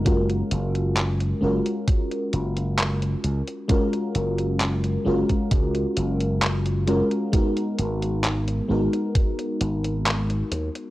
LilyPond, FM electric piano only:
\new Staff \with { instrumentName = "FM electric piano" } { \time 4/4 \key fis \major \tempo 4 = 66 <gis cis' eis' fis' ais'>4. <gis cis' eis' fis' ais'>2~ <gis cis' eis' fis' ais'>8 | <gis cis' eis' fis' ais'>4. <gis cis' eis' fis' ais'>2 <gis cis' eis' fis' ais'>8 | <gis b dis' fis' ais'>4. <gis b dis' fis' ais'>2~ <gis b dis' fis' ais'>8 | }